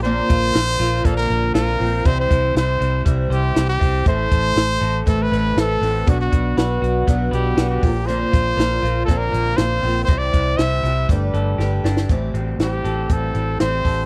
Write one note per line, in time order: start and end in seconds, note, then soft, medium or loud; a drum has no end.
0.00 0.20 A#1 loud
0.00 1.07 C5 loud
0.04 0.54 A#2 medium
0.04 2.05 A#2 medium
0.04 0.54 D3 medium
0.04 0.54 A#3 loud
0.04 0.56 C4 medium
0.04 0.55 F4 loud
0.04 closed hi-hat medium
0.29 0.50 A#1 loud
0.29 0.78 F4 medium
0.29 kick loud
0.29 closed hi-hat medium
0.53 0.75 A#1 medium
0.53 0.80 D3 medium
0.53 0.80 A#3 medium
0.53 0.80 C4 medium
0.53 1.28 A#4 medium
0.53 snare loud
0.53 closed hi-hat medium
0.79 1.00 A#1 loud
0.79 1.04 A#3 soft
0.79 1.04 C4 soft
0.79 1.04 F4 medium
0.79 1.53 F4 medium
0.79 snare soft
0.79 closed hi-hat medium
1.04 1.25 A#1 loud
1.04 1.55 A#2 medium
1.04 1.53 D3 medium
1.04 2.10 A#3 medium
1.04 1.54 A#3 medium
1.04 1.55 C4 medium
1.04 1.56 F4 medium
1.04 1.17 A4 medium
1.04 kick medium
1.04 closed hi-hat medium
1.17 1.52 A#4 loud
1.29 1.51 A#1 loud
1.29 2.10 A#4 medium
1.29 closed hi-hat medium
1.54 1.75 A#1 loud
1.54 1.80 D3 medium
1.54 1.80 A#3 medium
1.54 1.80 C4 medium
1.54 2.10 F4 medium
1.54 1.78 F4 medium
1.54 2.08 A#4 medium
1.54 snare loud
1.54 closed hi-hat medium
1.79 2.01 A#1 medium
1.79 2.05 A#3 soft
1.79 3.79 C4 medium
1.79 2.05 C4 soft
1.79 2.05 F4 medium
1.79 open hi-hat medium
2.05 2.26 C2 loud
2.05 2.55 C3 medium
2.05 4.05 C3 medium
2.05 2.55 E3 medium
2.05 2.55 G3 medium
2.05 2.57 C4 medium
2.05 2.57 E4 medium
2.05 2.18 C5 loud
2.05 kick loud
2.05 closed hi-hat medium
2.20 2.54 C5 medium
2.30 2.51 C2 medium
2.30 2.79 E4 medium
2.30 kick medium
2.30 closed hi-hat medium
2.55 2.76 C2 medium
2.55 2.81 G3 medium
2.55 2.80 C4 medium
2.55 2.79 E4 medium
2.55 3.30 C5 medium
2.55 3.03 C5 medium
2.55 snare loud
2.55 closed hi-hat medium
2.80 3.01 C2 medium
2.80 3.05 G3 soft
2.80 3.06 C4 soft
2.80 3.54 E4 medium
2.80 3.05 E4 soft
2.80 closed hi-hat medium
3.05 3.26 C2 loud
3.05 3.56 C3 medium
3.05 3.56 E3 medium
3.05 4.11 G3 medium
3.05 3.56 G3 medium
3.05 3.58 C4 medium
3.05 3.59 E4 medium
3.05 kick medium
3.05 closed hi-hat medium
3.30 3.51 C2 loud
3.30 3.67 G4 medium
3.30 4.11 C5 medium
3.30 closed hi-hat medium
3.55 3.76 C2 loud
3.55 3.81 E3 medium
3.55 3.81 G3 medium
3.55 3.80 C4 medium
3.55 4.10 E4 medium
3.55 snare loud
3.55 closed hi-hat medium
3.59 3.79 E4 medium
3.69 4.04 G4 medium
3.79 4.01 C2 loud
3.79 4.06 G3 soft
3.79 4.10 C4 medium
3.79 4.06 C4 soft
3.79 4.06 E4 medium
3.79 kick medium
3.79 open hi-hat medium
4.05 4.27 A1 loud
4.05 6.06 A2 medium
4.05 4.56 A2 medium
4.05 4.57 E3 medium
4.05 4.54 A3 medium
4.05 4.55 C4 medium
4.05 4.56 E4 medium
4.05 5.04 C5 loud
4.05 kick loud
4.05 closed hi-hat medium
4.31 4.52 A1 loud
4.31 4.80 A4 medium
4.31 kick medium
4.31 closed hi-hat medium
4.55 4.77 A1 medium
4.55 5.06 A3 medium
4.55 5.06 C4 medium
4.55 5.06 E4 medium
4.55 snare loud
4.55 closed hi-hat medium
4.81 5.02 A1 medium
4.81 5.56 A4 medium
4.81 snare soft
4.81 closed hi-hat medium
5.06 5.27 A1 medium
5.06 5.56 A2 medium
5.06 5.57 E3 medium
5.06 6.12 A3 medium
5.06 5.56 A3 medium
5.06 5.56 C4 medium
5.06 5.57 E4 medium
5.06 5.24 A4 medium
5.06 5.58 B4 medium
5.06 kick loud
5.06 closed hi-hat medium
5.22 5.58 B4 loud
5.32 5.52 A1 loud
5.32 6.12 B4 medium
5.32 closed hi-hat medium
5.56 5.77 A1 loud
5.56 5.82 A3 medium
5.56 5.82 C4 medium
5.56 5.82 E4 medium
5.56 6.12 A4 medium
5.56 6.11 A4 medium
5.56 5.81 B4 medium
5.56 snare loud
5.56 closed hi-hat medium
5.81 6.02 A1 medium
5.81 6.07 A3 soft
5.81 6.12 C4 medium
5.81 6.07 C4 soft
5.81 6.07 E4 medium
5.81 6.07 B4 medium
5.81 open hi-hat medium
6.06 6.28 B1 loud
6.06 6.57 B2 medium
6.06 7.81 B2 medium
6.06 6.56 F#3 medium
6.06 6.56 B3 medium
6.06 6.59 D4 medium
6.06 6.58 F#4 medium
6.06 6.21 F#4 medium
6.06 kick loud
6.06 closed hi-hat medium
6.21 6.55 F#4 medium
6.32 6.53 B1 medium
6.32 6.81 F#4 medium
6.32 kick loud
6.32 closed hi-hat medium
6.57 6.78 B1 medium
6.57 7.07 F#3 medium
6.57 7.07 B3 medium
6.57 7.08 D4 medium
6.57 7.04 F#4 medium
6.57 7.08 F#4 medium
6.57 7.30 B4 medium
6.57 snare loud
6.57 closed hi-hat medium
6.82 7.03 B1 medium
6.82 7.56 F#4 medium
6.82 closed hi-hat medium
7.07 7.28 B1 loud
7.07 7.58 B2 medium
7.07 7.57 F#3 medium
7.07 7.88 B3 medium
7.07 7.58 B3 medium
7.07 7.59 D4 medium
7.07 7.58 F#4 medium
7.07 kick medium
7.07 closed hi-hat medium
7.31 7.53 B1 loud
7.31 7.68 G4 medium
7.31 7.87 B4 medium
7.31 closed hi-hat medium
7.57 7.78 B1 loud
7.57 7.83 F#3 medium
7.57 7.84 B3 medium
7.57 7.84 D4 medium
7.57 7.88 F#4 medium
7.57 7.83 F#4 medium
7.57 snare loud
7.57 closed hi-hat medium
7.70 8.08 G4 medium
7.82 8.24 A#1 loud
7.82 8.06 A#2 medium
7.82 8.08 C4 medium
7.82 8.08 F4 medium
7.82 kick loud
7.82 open hi-hat medium
7.86 8.08 A#3 soft
8.06 10.08 A#2 medium
8.06 8.58 A#2 medium
8.06 8.56 D3 medium
8.06 8.57 A#3 medium
8.06 8.59 C4 loud
8.06 8.59 F4 loud
8.06 9.04 C5 loud
8.06 closed hi-hat medium
8.32 8.54 A#1 loud
8.32 8.81 F4 medium
8.32 kick loud
8.32 closed hi-hat medium
8.57 8.78 A#1 medium
8.57 8.83 D3 medium
8.57 8.83 A#3 medium
8.57 8.84 C4 medium
8.57 8.82 F4 medium
8.57 9.31 A#4 medium
8.57 snare loud
8.57 closed hi-hat medium
8.82 9.04 A#1 loud
8.82 9.08 A#3 soft
8.82 9.09 C4 soft
8.82 9.56 F4 medium
8.82 9.08 F4 medium
8.82 closed hi-hat medium
9.05 9.29 A#1 loud
9.05 9.59 A#2 medium
9.05 10.13 A#3 medium
9.05 9.19 A4 medium
9.05 kick medium
9.05 closed hi-hat medium
9.09 9.58 D3 medium
9.09 9.59 A#3 medium
9.09 9.59 C4 medium
9.09 9.60 F4 medium
9.18 9.58 A#4 medium
9.32 9.54 A#1 medium
9.32 10.13 A#4 medium
9.32 closed hi-hat medium
9.57 9.79 A#1 loud
9.57 9.84 D3 medium
9.57 9.84 A#3 medium
9.57 10.13 F4 medium
9.57 10.04 C5 loud
9.57 snare loud
9.57 closed hi-hat medium
9.61 9.85 C4 medium
9.61 9.83 F4 medium
9.82 10.04 A#1 medium
9.82 10.13 C4 medium
9.82 10.09 F4 medium
9.82 open hi-hat medium
9.86 10.10 A#3 soft
9.86 10.10 C4 medium
10.05 10.29 C2 loud
10.05 11.14 C3 medium
10.05 10.20 C5 loud
10.05 kick loud
10.05 closed hi-hat medium
10.10 10.59 C3 medium
10.10 10.59 E3 medium
10.10 10.61 G3 medium
10.10 10.60 C4 medium
10.10 10.60 E4 medium
10.18 10.59 D5 loud
10.32 10.54 C2 medium
10.32 10.82 E4 medium
10.32 kick medium
10.32 closed hi-hat medium
10.57 10.79 C2 medium
10.57 10.85 E3 medium
10.57 10.85 G3 medium
10.57 11.13 C5 medium
10.57 11.08 E5 loud
10.57 snare loud
10.57 closed hi-hat medium
10.62 10.85 C4 medium
10.62 10.84 E4 medium
10.83 11.04 C2 medium
10.83 11.10 C4 soft
10.83 11.14 E4 medium
10.83 11.10 E4 medium
10.83 closed hi-hat medium
10.88 11.09 G3 soft
11.09 11.30 G1 loud
11.09 12.88 G3 medium
11.09 11.63 G3 medium
11.09 11.60 A3 medium
11.09 11.60 D4 medium
11.09 11.62 G4 medium
11.09 11.61 B4 medium
11.09 kick loud
11.09 closed hi-hat medium
11.34 11.54 G1 medium
11.34 12.84 A4 medium
11.34 closed hi-hat medium
11.58 11.79 G1 loud
11.58 11.85 A3 medium
11.58 11.85 D4 medium
11.58 12.60 G4 medium
11.58 11.84 G4 medium
11.58 snare medium
11.62 11.83 B4 medium
11.84 12.05 G1 medium
11.84 12.15 D4 medium
11.84 12.10 D4 medium
11.84 12.10 G4 medium
11.84 12.09 B4 medium
11.84 snare medium
11.97 snare medium
12.09 12.30 A1 medium
12.09 14.06 A2 medium
12.09 12.35 A2 medium
12.09 12.35 E3 medium
12.09 12.35 G3 medium
12.09 12.34 C4 medium
12.09 12.33 G4 medium
12.09 kick loud
12.09 closed hi-hat medium
12.34 12.55 A1 medium
12.34 12.60 G3 soft
12.34 13.09 C4 medium
12.34 12.60 C4 soft
12.34 12.59 G4 soft
12.34 closed hi-hat medium
12.59 12.80 A1 medium
12.59 12.85 A2 medium
12.59 12.85 E3 medium
12.59 12.85 G3 medium
12.59 12.84 C4 medium
12.59 13.34 E4 medium
12.59 12.83 G4 medium
12.59 13.14 G4 medium
12.59 snare loud
12.59 closed hi-hat medium
12.84 13.05 A1 medium
12.84 13.10 G3 soft
12.84 13.10 C4 soft
12.84 13.10 G4 soft
12.84 13.84 A4 medium
12.84 closed hi-hat medium
13.09 13.30 A1 medium
13.09 13.35 E3 medium
13.09 13.36 G3 medium
13.09 13.59 C4 medium
13.09 13.35 C4 medium
13.09 13.34 G4 medium
13.09 13.60 A4 medium
13.09 kick medium
13.09 closed hi-hat medium
13.35 13.56 A1 medium
13.35 13.60 G3 soft
13.35 13.60 C4 soft
13.35 14.06 E4 soft
13.35 13.60 G4 medium
13.35 closed hi-hat medium
13.60 13.81 A1 loud
13.60 14.06 A2 medium
13.60 14.06 E3 medium
13.60 14.06 G3 medium
13.60 14.06 C4 medium
13.60 14.06 G4 medium
13.60 14.06 C5 medium
13.60 snare loud
13.60 closed hi-hat medium
13.85 14.06 A1 medium
13.85 14.06 A4 medium
13.85 kick medium
13.85 open hi-hat medium